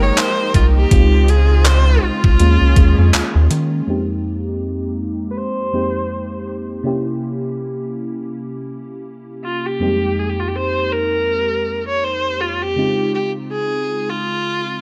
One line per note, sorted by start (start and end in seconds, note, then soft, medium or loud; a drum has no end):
0.00 0.12 G1 medium
0.00 0.88 F3 medium
0.00 0.88 G#3 medium
0.00 0.92 G#3 medium
0.00 0.54 A#3 medium
0.00 0.54 D#4 medium
0.00 2.36 D#4 medium
0.00 0.88 G4 medium
0.00 0.54 A#4 medium
0.00 0.88 A#4 medium
0.00 0.20 C#5 medium
0.17 0.55 C5 loud
0.17 clap loud
0.17 closed hi-hat medium
0.54 0.86 C2 loud
0.54 0.65 F4 medium
0.54 kick medium
0.54 closed hi-hat medium
0.77 1.31 G4 medium
0.91 1.99 C#2 loud
0.91 2.38 C#3 medium
0.91 1.91 G#3 medium
0.91 2.38 C4 medium
0.91 1.92 C4 medium
0.91 1.92 D#4 medium
0.91 3.85 F4 medium
0.91 1.92 F4 medium
0.91 kick loud
0.91 closed hi-hat medium
1.28 1.68 G#4 medium
1.28 closed hi-hat medium
1.65 2.05 C5 loud
1.65 clap loud
1.65 closed hi-hat medium
2.03 2.11 C2 soft
2.03 3.51 F4 medium
2.24 2.37 C2 medium
2.24 kick medium
2.40 2.58 D#2 loud
2.40 3.86 D#3 medium
2.40 2.70 G#3 medium
2.40 2.71 A#3 medium
2.40 3.86 C#4 medium
2.40 2.71 C#4 medium
2.40 2.71 F4 medium
2.40 3.86 G#4 medium
2.40 closed hi-hat medium
2.61 2.74 C#2 medium
2.76 2.95 D#2 loud
2.76 3.50 G#3 medium
2.76 3.50 A#3 medium
2.76 3.51 C#4 medium
2.76 3.51 F4 medium
2.76 kick medium
2.76 closed hi-hat medium
2.98 3.11 F2 loud
3.14 3.22 D#2 soft
3.14 clap loud
3.14 closed hi-hat medium
3.35 3.48 D#2 medium
3.51 3.82 D#3 loud
3.51 closed hi-hat medium
3.87 5.69 F2 medium
3.87 5.69 G#3 medium
3.87 5.69 A#3 medium
3.87 5.70 C4 medium
3.87 5.70 D#4 medium
3.87 5.70 G4 medium
5.31 5.38 B4 medium
5.37 6.47 C5 loud
5.73 6.84 F2 soft
5.73 6.84 G#3 soft
5.73 6.83 A#3 soft
5.73 6.85 C4 soft
5.73 6.85 D#4 soft
5.73 6.85 G4 medium
6.83 9.76 C3 medium
6.83 9.76 A#3 medium
6.83 9.77 C#4 medium
6.83 9.77 E4 medium
6.83 9.78 G4 medium
9.44 9.67 F4 medium
9.66 10.20 G4 medium
9.80 12.72 F2 medium
9.80 9.88 G3 soft
9.80 12.73 A#3 medium
9.80 12.73 C4 medium
9.80 12.73 D#4 medium
9.80 12.74 G4 medium
9.87 12.76 G#3 medium
10.19 10.31 G#4 medium
10.30 10.42 G4 medium
10.40 10.49 F4 medium
10.48 10.57 G4 medium
10.56 10.94 C5 loud
10.92 11.87 A#4 loud
11.88 12.05 C#5 loud
12.04 12.42 C5 loud
12.41 12.63 F4 medium
12.62 13.14 G4 medium
12.76 14.81 C#3 medium
12.76 14.81 G#3 medium
12.76 14.81 C4 medium
12.76 14.81 D#4 medium
12.76 14.81 F4 medium
13.15 13.31 G4 medium
13.52 14.11 G#4 medium
14.10 14.81 F4 medium